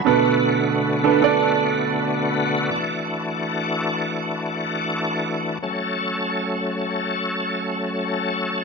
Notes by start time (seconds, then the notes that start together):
0.05 B2 D3 A3 B3 D4 F#4 A4 B4
1.04 D4 A4 B4
1.22 D4 A4 D5
2.71 E3 A3 D4
5.62 F#3 A3 C#4 A4